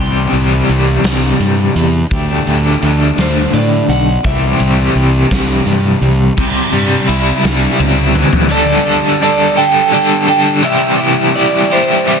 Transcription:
0.00 0.25 C2 medium
0.00 2.11 C3 medium
0.00 2.09 E3 medium
0.00 2.10 G3 medium
0.00 2.11 C4 medium
0.00 2.12 G4 medium
0.00 1.36 C6 medium
0.32 0.60 C2 medium
0.32 closed hi-hat medium
0.69 0.96 C2 medium
0.69 closed hi-hat medium
1.04 1.31 C2 medium
1.04 snare loud
1.04 closed hi-hat medium
1.40 1.67 G2 medium
1.40 closed hi-hat medium
1.75 2.03 E2 medium
1.75 closed hi-hat medium
2.09 2.39 D2 medium
2.09 4.24 D3 medium
2.09 4.25 A3 medium
2.09 4.25 D4 medium
2.09 4.26 G4 medium
2.09 kick loud
2.09 closed hi-hat medium
2.47 2.74 D2 medium
2.47 closed hi-hat medium
2.82 3.10 D2 medium
2.82 closed hi-hat medium
3.18 3.45 D2 medium
3.18 3.54 C5 medium
3.18 snare loud
3.18 closed hi-hat loud
3.53 3.81 A2 medium
3.53 3.87 D5 medium
3.53 closed hi-hat medium
3.88 4.16 B1 medium
3.88 4.25 F#5 medium
3.88 closed hi-hat medium
4.23 4.52 C2 medium
4.23 6.37 C3 medium
4.23 6.38 E3 medium
4.23 6.38 G3 medium
4.23 6.39 C4 medium
4.23 6.39 G4 medium
4.23 5.64 E5 medium
4.23 kick loud
4.23 closed hi-hat medium
4.60 4.88 C2 medium
4.60 closed hi-hat medium
4.95 5.23 C2 medium
4.95 closed hi-hat medium
5.31 5.59 C2 medium
5.31 kick medium
5.31 snare loud
5.31 closed hi-hat medium
5.66 5.94 G2 medium
5.66 closed hi-hat medium
6.01 6.29 C2 medium
6.01 closed hi-hat medium
6.37 6.59 C2 medium
6.37 8.16 C3 medium
6.37 kick loud
6.37 crash loud
6.73 6.95 G2 medium
6.73 7.43 G3 medium
6.73 ride medium
7.08 7.30 C2 medium
7.08 8.51 E4 medium
7.08 ride medium
7.44 7.66 C2 medium
7.44 8.49 G3 medium
7.44 snare loud
7.44 ride loud
7.79 8.23 C#2 medium
7.79 8.51 C4 medium
7.79 ride medium
8.14 8.49 E3 medium
8.14 high tom medium
8.33 floor tom medium
8.49 9.19 D3 loud
8.49 8.87 G3 loud
8.49 8.85 D4 loud
8.49 8.84 A4 loud
8.49 9.18 D5 medium
8.85 9.21 G3 medium
8.85 9.21 D4 medium
8.85 9.21 A4 medium
9.20 9.91 D3 medium
9.20 9.59 G3 medium
9.20 9.57 D4 loud
9.20 9.55 A4 medium
9.20 9.55 D5 medium
9.56 9.92 G3 medium
9.56 9.92 D4 medium
9.56 9.93 A4 medium
9.56 10.28 G5 loud
9.92 10.61 D3 medium
9.92 10.29 G3 medium
9.92 10.28 D4 medium
9.92 10.26 A4 medium
10.27 10.64 G3 medium
10.27 10.62 D4 medium
10.27 10.61 A4 medium
10.27 10.38 G5 medium
10.62 11.34 C3 loud
10.62 11.33 E3 loud
10.62 11.01 G3 loud
10.62 10.99 E4 loud
10.62 10.98 G4 loud
10.62 11.35 E5 medium
10.98 11.35 G3 medium
10.98 11.35 E4 medium
10.98 11.37 G4 medium
11.34 12.05 E3 medium
11.34 11.73 G3 medium
11.34 11.70 E4 medium
11.34 11.70 G4 loud
11.34 11.72 D5 medium
11.70 12.06 G3 medium
11.70 12.07 E4 medium
11.70 12.08 G4 medium
11.70 12.20 C5 medium
12.06 12.20 E3 medium
12.06 12.20 G3 medium
12.06 12.20 E4 medium
12.06 12.20 G4 medium

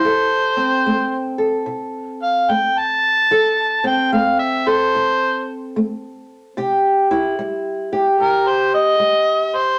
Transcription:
0.00 1.37 C5 loud
0.04 0.80 F3 medium
0.04 1.38 A4 medium
0.57 3.83 C4 medium
0.86 1.62 A3 medium
1.38 3.27 A4 medium
1.66 2.43 C3 medium
2.23 2.53 F5 medium
2.50 3.25 A3 medium
2.50 2.80 G5 medium
2.78 3.83 A5 loud
3.31 4.07 F3 medium
3.31 4.65 A4 medium
3.84 7.10 C4 medium
3.84 4.12 G5 medium
4.12 4.88 A3 medium
4.12 4.38 F5 medium
4.39 4.70 E5 medium
4.67 6.55 A4 medium
4.67 5.47 C5 loud
4.95 5.70 C3 medium
5.76 6.52 A3 medium
6.57 7.33 C3 medium
6.57 7.92 G4 medium
7.11 9.79 E4 medium
7.39 8.14 G3 medium
7.93 9.79 G4 medium
8.20 8.96 G2 medium
8.20 8.49 A#4 loud
8.48 8.74 C5 medium
8.74 9.58 D#5 medium
9.00 9.76 G3 medium
9.56 9.79 C5 medium

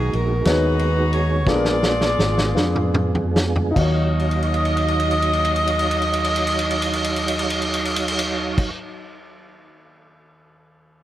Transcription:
0.00 0.42 D#3 medium
0.00 1.43 G#3 medium
0.00 0.16 B3 medium
0.00 1.46 B3 medium
0.00 0.17 D#4 medium
0.00 0.43 D#4 medium
0.00 1.44 D#4 medium
0.00 0.17 F#4 medium
0.00 0.43 F#4 medium
0.00 1.43 F#4 medium
0.00 0.15 G#4 medium
0.00 0.17 G#4 medium
0.00 1.43 G#4 medium
0.00 0.18 A#4 medium
0.13 0.44 A#1 medium
0.13 0.47 A#4 loud
0.13 ride soft
0.45 1.47 D#2 medium
0.45 1.16 B3 medium
0.45 1.16 D#4 medium
0.45 1.44 D#4 medium
0.45 1.16 F#4 medium
0.45 1.44 F#4 medium
0.45 1.17 G#4 medium
0.45 1.09 B4 loud
0.45 1.17 C#5 medium
0.45 snare loud
0.45 ride medium
0.79 ride soft
1.13 1.48 C#5 loud
1.13 ride soft
1.46 2.14 A#1 loud
1.46 2.52 A#2 medium
1.46 3.72 G#3 medium
1.46 2.22 B3 medium
1.46 3.73 B3 medium
1.46 2.22 D4 medium
1.46 3.72 D4 medium
1.46 2.22 F4 medium
1.46 3.72 F4 medium
1.46 3.31 F4 medium
1.46 1.53 G#4 medium
1.46 3.31 G#4 medium
1.46 2.23 G#4 medium
1.46 1.55 A4 medium
1.46 3.36 D5 loud
1.46 kick loud
1.46 snare medium
1.54 3.76 G#4 medium
1.54 2.26 A#4 loud
1.65 snare medium
1.83 snare medium
2.01 snare medium
2.19 2.53 G#1 medium
2.19 snare medium
2.38 snare medium
2.54 3.73 F2 medium
2.54 3.38 B3 medium
2.54 3.38 D4 medium
2.54 3.39 F4 medium
2.54 3.39 G#4 medium
2.54 3.39 B4 medium
2.54 snare medium
2.76 mid tom medium
2.94 mid tom loud
3.15 floor tom medium
3.36 snare loud
3.56 floor tom medium
3.71 8.68 D#4 medium
3.71 8.69 F4 medium
3.76 8.70 D#2 medium
3.76 8.71 D#2 medium
3.76 8.70 F#3 medium
3.76 8.70 D#4 medium
3.76 8.71 F#4 medium
3.76 8.71 C#5 medium
3.76 8.71 D#5 loud
3.76 8.71 F5 medium
3.76 kick loud
3.76 crash medium
3.81 8.73 C#5 medium
4.20 crash soft
4.31 ride soft
4.42 crash soft
4.54 ride soft
4.65 crash medium
4.77 ride medium
4.88 crash medium
5.00 ride medium
5.11 crash medium
5.22 ride medium
5.33 crash medium
5.45 ride medium
5.56 crash medium
5.67 ride medium
5.79 crash medium
5.91 ride medium
6.02 crash medium
6.13 ride medium
6.24 crash medium
6.36 ride medium
6.47 crash medium
6.59 ride medium
6.71 crash medium
6.82 ride medium
6.93 crash medium
7.04 ride medium
7.16 crash medium
7.28 ride medium
7.39 crash medium
7.50 ride medium
7.62 crash medium
7.74 ride medium
7.85 crash medium
7.96 ride medium
8.08 crash loud
8.19 ride medium
8.58 kick loud
8.58 crash loud

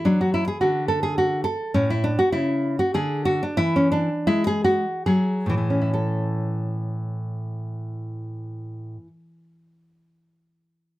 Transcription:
0.05 0.46 F#3 medium
0.05 0.20 D4 medium
0.21 0.33 F#4 medium
0.34 0.47 E4 medium
0.48 0.60 G#4 medium
0.61 1.43 D3 medium
0.61 0.88 F#4 medium
0.88 1.02 A4 loud
1.03 1.17 G#4 medium
1.18 1.44 F#4 loud
1.44 1.73 A4 loud
1.74 2.16 A2 medium
1.74 1.89 C#4 loud
1.90 2.04 E4 medium
2.04 2.18 D4 medium
2.19 2.32 F#4 medium
2.32 2.77 C#3 medium
2.32 2.76 E4 loud
2.79 2.94 F#4 medium
2.94 3.41 D3 medium
2.94 3.25 G#4 loud
3.25 3.42 F#4 loud
3.43 3.59 D4 loud
3.57 4.08 E3 medium
3.57 3.75 E4 loud
3.76 3.91 C#4 medium
3.92 4.26 D4 loud
4.27 4.84 G#3 medium
4.27 4.46 E4 loud
4.47 4.64 G#4 loud
4.64 5.04 F#4 loud
5.06 5.47 F#3 medium
5.06 5.81 G#4 loud
5.46 8.96 A2 medium
5.46 5.56 E3 medium
5.58 9.07 E3 medium
5.70 9.20 C#4 medium
5.81 5.93 E4 medium
5.93 9.43 A4 medium

